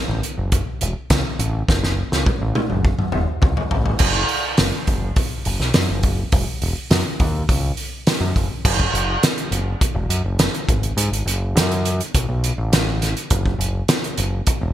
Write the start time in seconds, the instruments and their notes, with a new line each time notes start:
0.08 picked electric bass A1
0.23 closed hi-hat
0.38 picked electric bass F#1
0.52 kick, closed hi-hat
0.81 picked electric bass E1, closed hi-hat
1.10 picked electric bass C#2, kick, snare, closed hi-hat
1.39 picked electric bass A1, closed hi-hat
1.69 picked electric bass F#1, kick, snare
1.84 snare
2.12 picked electric bass C#2, snare
2.26 kick, high tom
2.41 picked electric bass A1
2.55 high tom
2.70 picked electric bass F#1, mid tom
2.85 kick
2.99 mid tom
3.12 picked electric bass E1, mid tom
3.42 picked electric bass C#2, kick, mid tom
3.57 floor tom
3.71 picked electric bass A1, floor tom
3.86 floor tom
3.99 picked electric bass F#1, kick, crash
4.29 open hi-hat
4.57 picked electric bass F#1, snare, open hi-hat
4.87 picked electric bass F#1, kick, open hi-hat
5.16 kick, open hi-hat
5.45 picked electric bass F#1, open hi-hat
5.60 picked electric bass B1, snare
5.74 picked electric bass F#2, snare, open hi-hat
5.89 picked electric bass F#1
6.03 kick, open hi-hat
6.32 picked electric bass E1, kick, open hi-hat
6.62 picked electric bass E1, open hi-hat
6.91 picked electric bass F#2, snare, open hi-hat
7.20 picked electric bass D#2, kick, open hi-hat
7.49 picked electric bass C#2, kick, open hi-hat
7.77 open hi-hat
8.07 snare, open hi-hat
8.21 picked electric bass F#2
8.36 picked electric bass F#1, kick, open hi-hat
8.65 picked electric bass F#1, kick, crash
8.80 kick
8.93 picked electric bass F#1, closed hi-hat
9.23 snare, closed hi-hat
9.38 closed hi-hat
9.51 picked electric bass F#1, closed hi-hat
9.81 kick, closed hi-hat
9.95 picked electric bass E1
10.09 picked electric bass F#2, closed hi-hat
10.24 picked electric bass F#1
10.39 snare, closed hi-hat
10.54 closed hi-hat
10.69 picked electric bass G#1, kick, closed hi-hat
10.83 closed hi-hat
10.97 picked electric bass G#2, closed hi-hat
11.12 picked electric bass G#1, closed hi-hat
11.26 picked electric bass F#1, closed hi-hat
11.55 picked electric bass F#2, snare, closed hi-hat
11.71 closed hi-hat
11.85 closed hi-hat
12.00 closed hi-hat
12.14 picked electric bass B1, kick, closed hi-hat
12.29 picked electric bass B1
12.44 closed hi-hat
12.58 picked electric bass A1
12.73 snare, closed hi-hat
13.02 snare, closed hi-hat
13.17 closed hi-hat
13.30 picked electric bass F#1, kick, closed hi-hat
13.46 kick
13.58 picked electric bass F#1, closed hi-hat
13.88 snare, closed hi-hat
14.04 closed hi-hat
14.17 picked electric bass F#1, closed hi-hat
14.47 kick, closed hi-hat
14.61 picked electric bass E1